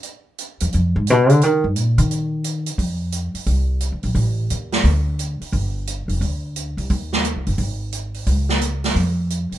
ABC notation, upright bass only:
X:1
M:4/4
L:1/16
Q:"Swing" 1/4=175
K:Gm
V:1 name="Upright bass" clef=bass
z6 =E,,2 F,,2 _A,,2 _C,2 D,2 | E,2 G,,2 B,,2 E,8- E, z | [K:Gdor] F,,6 z2 C,,4- (3C,,2 D,,2 B,,,2 | A,,,4 _E,,4 D,,6 z2 |
G,,,6 F,,,2 D,,6 C,,2 | _E,,4- (3E,,2 _D,,2 G,,,2 _A,,,8 | _D,,8 F,,6 z2 |]